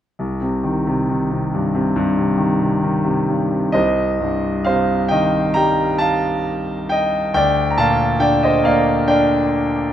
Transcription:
0.19 3.70 C2 soft
0.41 0.85 C3 soft
0.64 1.08 D#3 soft
0.87 1.30 C3 soft
1.09 2.36 D#3 soft
1.31 1.73 C3 soft
1.54 1.94 G2 soft
1.74 2.16 C3 soft
1.96 3.27 G2 medium
2.17 2.59 C3 soft
2.38 2.81 D#3 soft
2.61 3.03 C3 soft
2.82 3.72 D#3 soft
3.04 3.49 C3 soft
3.28 3.73 G2 soft
3.51 3.74 C3 soft
3.72 7.30 C2 soft
3.72 4.63 C5 soft
3.72 4.69 D#5 medium
4.20 5.96 G2 soft
4.64 6.42 C3 soft
4.64 5.08 C5 soft
4.64 5.07 F5 medium
5.08 6.86 D#3 soft
5.08 5.53 D#5 medium
5.08 5.51 G5 medium
5.54 7.30 G3 soft
5.54 5.97 G5 medium
5.54 5.96 A#5 medium
5.98 6.86 F5 medium
5.98 6.85 A5 medium
6.89 7.32 D#5 medium
6.89 7.31 G5 medium
7.34 9.93 D2 medium
7.34 7.69 D5 medium
7.34 7.68 G5 medium
7.71 7.77 A#5 medium
7.78 9.47 A#2 soft
7.78 8.18 F5 medium
7.78 8.22 A5 medium
8.20 9.90 D3 soft
8.20 8.41 D5 medium
8.20 8.40 G5 medium
8.43 8.64 C5 soft
8.43 8.65 D#5 medium
8.63 9.93 A#3 soft
8.63 9.06 D5 medium
8.63 9.09 F5 medium
9.07 9.93 D4 soft
9.07 9.93 D5 soft
9.07 9.93 G5 medium

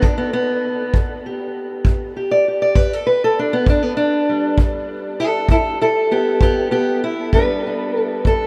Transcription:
0.02 0.58 E2 medium
0.02 0.18 D4 loud
0.02 kick medium
0.18 0.32 B3 medium
0.33 0.94 B3 loud
0.94 1.49 E2 medium
0.94 kick medium
1.26 2.16 G4 soft
1.85 2.40 E2 medium
1.85 kick medium
2.17 2.48 G4 soft
2.31 2.46 D5 medium
2.48 2.93 G4 soft
2.62 2.75 D5 medium
2.75 3.31 E2 medium
2.75 2.91 B4 loud
2.75 kick medium
2.93 3.08 A4 medium
3.07 3.22 B4 loud
3.24 3.38 A4 loud
3.39 3.53 D4 medium
3.53 3.68 B3 loud
3.66 4.22 E2 medium
3.66 3.82 D4 medium
3.66 kick medium
3.82 3.96 B3 loud
3.97 4.58 D4 loud
4.29 7.34 G3 soft
4.58 5.13 E2 medium
4.58 kick medium
5.20 5.24 E4 medium
5.20 5.50 A4 loud
5.48 6.04 E2 medium
5.48 5.55 E4 medium
5.48 5.81 A4 loud
5.48 kick medium
5.81 5.86 E4 medium
5.81 6.12 A4 loud
6.11 6.40 B3 medium
6.11 6.41 G4 medium
6.41 6.96 E2 medium
6.41 6.70 B3 medium
6.41 6.71 G4 loud
6.41 kick medium
6.71 7.02 B3 medium
6.71 7.02 G4 loud
7.04 7.33 E4 loud
7.33 7.88 E2 medium
7.33 8.47 G3 soft
7.33 8.47 B3 soft
7.33 7.66 D4 soft
7.33 7.99 B4 loud
7.33 kick medium
7.67 7.97 D4 soft
7.97 8.47 D4 soft
7.97 8.25 A4 loud
8.25 8.47 E2 medium
8.25 8.47 A4 medium
8.25 kick medium

